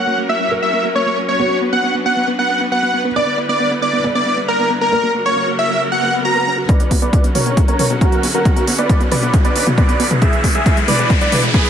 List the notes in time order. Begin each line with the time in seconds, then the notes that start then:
Already playing: F#3 A#3 C#4 F#4 A#4 C#5 F#5 F#6
0.07 A#3
0.18 A#3
0.29 A#3 E5 E6
0.40 A#3
0.51 A#3 A#4
0.62 A#3 E5 E6
0.73 A#3
0.84 A#3
0.95 A#3 C#5 C#6
1.06 A#3
1.17 A#3
1.28 A#3 C#5 C#6
1.39 B3 D4 F#4 B4
1.50 B3
1.62 B3
1.72 B3 F#5 F#6
1.84 B3
1.95 B3
2.06 B3 F#5 F#6
2.17 B3
2.28 B3
2.39 B3 F#5 F#6
2.50 B3
2.61 B3
2.72 B3 F#5 F#6
2.83 B3
2.94 B3
3.05 B3
3.16 D3 G3 B3 E4 D5 D6
3.27 B3
3.38 B3
3.49 B3 D5 D6
3.60 B3
3.71 B3
3.82 B3 D5 D6
3.93 B3
4.04 B3 D5
4.15 B3 D5 D6
4.26 B3
4.37 B3
4.48 B3 A#4 A#5
4.59 B3
4.70 B3
4.81 B3 A#4 A#5
4.92 C#3 F#3 A#3 F#4 A#4
5.04 A#3
5.15 A#3
5.26 A#3 C#5 C#6
5.37 A#3
5.48 A#3
5.58 A#3 E5 E6
5.70 A#3
5.81 A#3, swell
5.92 A#3 F#5 F#6
6.03 A#3
6.14 F#5
6.25 F#4 A#5 A#6
6.36 A#4
6.47 C#4
6.58 F#4
6.69 D3 F#3 B3 C#4 F#4 B4 D5, kick, closed hi-hat, riser
6.80 B1 B3, closed hi-hat
6.91 B1 B3, kick, open hi-hat
7.02 B1 B3 B4 D5, closed hi-hat
7.13 B3, kick, closed hi-hat
7.24 F#1 B3, closed hi-hat
7.35 B1 B3 A#4 C#5, open hi-hat, mid tom
7.46 B1 B3, closed hi-hat
7.57 B3, kick, closed hi-hat
7.68 B1 B3 A#4 C#5, closed hi-hat
7.79 B1 B3, open hi-hat, mid tom
7.90 B1 B3, closed hi-hat
8.01 B3 F#4 A#4, kick, closed hi-hat
8.12 B1 B3, closed hi-hat
8.23 B1 B3, open hi-hat
8.34 B1 B3 F#4 A#4, closed hi-hat
8.45 B3, kick, closed hi-hat
8.56 B1 B3, closed hi-hat
8.67 B1 B3, open hi-hat
8.78 B1 B3 B4 D5, closed hi-hat
8.89 B3, kick, closed hi-hat
9.00 F#1 B3, closed hi-hat
9.11 B1 B3 B4 D5, open hi-hat, mid tom
9.22 B1 B3, closed hi-hat
9.34 B3, kick, closed hi-hat
9.45 B1 B3 B4 D5, closed hi-hat
9.56 B1 B3, open hi-hat
9.67 B1 B3, closed hi-hat, mid tom
9.78 B3 B4 D5, kick, closed hi-hat
9.89 B1 B3, closed hi-hat
10.00 B1 B3, open hi-hat
10.11 B1 B3, closed hi-hat, mid tom
10.22 E3 G#3 E4 G#4 E5, kick, closed hi-hat
10.33 E1 G#3, closed hi-hat
10.44 E1 G#3, kick, open hi-hat
10.55 E1 G#3 G#4 E5, closed hi-hat
10.66 G#3, kick, closed hi-hat
10.77 E2 G#3, closed hi-hat
10.88 E1 G#3 B4 D5, open hi-hat, mid tom
10.99 E1 G#3, closed hi-hat
11.10 G#3, kick, closed hi-hat
11.21 E1 G#3 B4 D5, closed hi-hat
11.32 E1 G#3, open hi-hat, mid tom
11.43 E1 G#3, closed hi-hat
11.54 G#3 G#4 B4, kick, closed hi-hat
11.65 E1 G#3, closed hi-hat